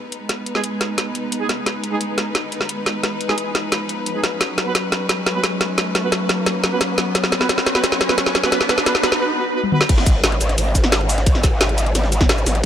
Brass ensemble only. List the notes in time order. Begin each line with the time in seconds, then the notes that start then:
0.55 G#3 D#4 G#4
1.41 G#3 D#4 G#4
1.92 G#3 D#4 G#4
3.29 G#3 D#4 G#4
4.15 G#3 D#4 G#4
4.66 B3 F#4 B4
5.35 B3 F#4 B4
6.03 B3 F#4 B4
6.72 B3 F#4 B4
7.41 B3 F#4 B4
7.75 B3 F#4 B4
8.09 B3 F#4 B4
8.44 B3 F#4 B4
8.52 B3 F#4 B4
8.69 B3 F#4 B4
8.86 B3 F#4 B4
9.03 B3 F#4 B4
9.21 B3 F#4 B4
9.38 B3 F#4 B4
9.55 B3 F#4 B4
9.72 B3 F#4 B4